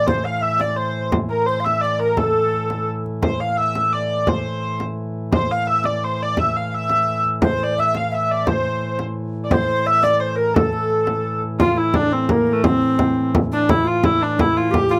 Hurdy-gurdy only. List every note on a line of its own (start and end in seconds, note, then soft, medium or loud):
0.07 0.25 C5 medium
0.25 0.43 F5 medium
0.42 0.61 E5 loud
0.61 0.77 D5 medium
0.76 1.09 C5 medium
1.30 1.46 A#4 medium
1.46 1.64 C5 medium
1.64 1.82 E5 medium
1.81 2.00 D5 medium
2.00 2.17 A#4 medium
2.17 2.88 A4 medium
3.23 3.40 C5 medium
3.40 3.58 F5 medium
3.57 3.93 E5 loud
3.93 4.28 D5 medium
4.28 4.80 C5 medium
5.33 5.51 C5 medium
5.51 5.68 F5 medium
5.67 5.85 E5 loud
5.85 6.04 D5 medium
6.04 6.22 C5 medium
6.22 6.39 D5 loud
6.39 6.56 E5 medium
6.56 6.74 F5 medium
6.74 7.22 E5 loud
7.45 7.63 C5 medium
7.63 7.79 D5 medium
7.79 7.97 E5 loud
7.97 8.14 F5 medium
8.14 8.31 E5 medium
8.31 8.48 D5 medium
8.48 9.00 C5 medium
9.44 9.54 D5 medium
9.54 9.87 C5 medium
9.86 10.03 E5 loud
10.03 10.20 D5 loud
10.20 10.36 C5 medium
10.36 10.54 A#4 medium
10.54 11.38 A4 medium
11.60 11.77 F4 loud
11.77 11.95 E4 loud
11.95 12.13 D4 loud
12.13 12.30 C4 loud
12.29 12.53 A#3 medium
12.53 12.64 A3 medium
12.64 13.30 C4 loud
13.53 13.70 D4 loud
13.70 13.87 E4 loud
13.87 14.05 F4 loud
14.05 14.23 E4 loud
14.23 14.40 D4 loud
14.40 14.57 E4 loud
14.57 14.74 F4 loud
14.74 14.91 G4 loud
14.91 14.99 F4 loud